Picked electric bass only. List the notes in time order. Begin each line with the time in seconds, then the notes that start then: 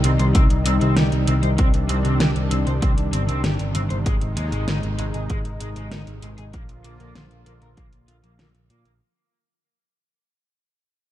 0.04 C2
0.19 C2
0.35 C2
0.50 C2
0.66 C2
0.81 C2
0.97 C2
1.12 C2
1.28 C2
1.43 C2
1.59 C2
1.74 C2
1.89 C2
2.05 C2
2.21 C2
2.36 C2
2.51 C2
2.67 C2
2.82 C2
2.98 C2
3.13 G1
3.29 C2
3.44 G1
3.60 G1
3.75 G1
3.90 G1
4.06 G#1
4.22 G#1
4.37 D#2
4.52 G#1
4.68 G#1
4.83 G#1
4.99 G#1
5.14 G#1
5.30 G#1
5.45 G#1
5.61 G#1
5.76 G#1
6.07 G#1
6.22 G#1
6.38 G#1
6.54 A#1
6.69 A#1
6.84 A#1
7.00 A#1
7.15 A#1
7.31 A#1
7.46 A#1
7.62 A#1
7.77 A#1
7.93 A#1
8.08 A#1
8.24 A#1
8.39 A#1
8.55 A#1
8.70 A#2
8.86 A#1